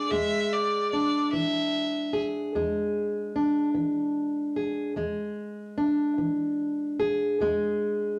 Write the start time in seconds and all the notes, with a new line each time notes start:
Already playing: G#3 D4 G#4 D5
0.10 E2 G#3 E5
0.52 D5
0.91 D4 D5
1.32 E3 E5
2.13 G#4
2.55 E2 G#3
3.36 D4
3.75 E3
4.56 G#4
4.96 E2 G#3
5.78 D4
6.18 E3
7.00 G#4
7.40 E2 G#3